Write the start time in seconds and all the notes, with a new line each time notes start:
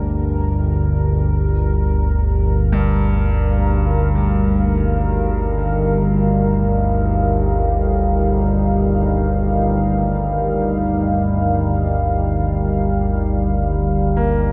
Already playing: G1 D2 G3 A#3 D4 A#4
1.77 F5
2.72 G2 D#4
14.17 A#3